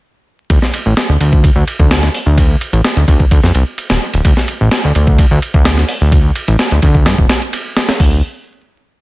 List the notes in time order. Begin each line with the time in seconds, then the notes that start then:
0.50 D2, kick, ride
0.62 snare
0.74 ride
0.86 A1
0.97 snare, ride
1.09 D2
1.20 D2, ride
1.33 kick
1.44 kick, ride
1.56 D2
1.67 ride
1.79 D2, kick
1.91 snare, ride
2.03 snare
2.14 open hi-hat
2.26 D2
2.38 kick, ride
2.61 ride
2.73 A1, ride
2.84 snare, ride
2.96 D2, ride
3.08 D2, kick, ride
3.20 kick
3.31 D2, kick, ride
3.43 F2, snare
3.55 C2, ride
3.78 ride
3.90 D1, snare, ride
4.13 D1, ride
4.25 D2, kick, ride
4.37 snare
4.48 ride
4.61 A1
4.71 snare, ride
4.84 D2
4.95 D2, ride
5.07 kick
5.18 kick, ride
5.31 D2
5.42 ride
5.54 D2, kick
5.65 snare, ride
5.77 snare
5.89 open hi-hat
6.01 D2
6.12 kick, ride
6.35 ride
6.48 A1, ride
6.59 snare, ride
6.71 D2, ride
6.82 D2, kick, ride
6.95 kick
7.06 G2, snare, ride
7.18 D1, kick
7.29 snare, ride
7.42 ride
7.53 ride
7.77 snare, ride
7.89 snare, ride
8.00 D2, kick, open hi-hat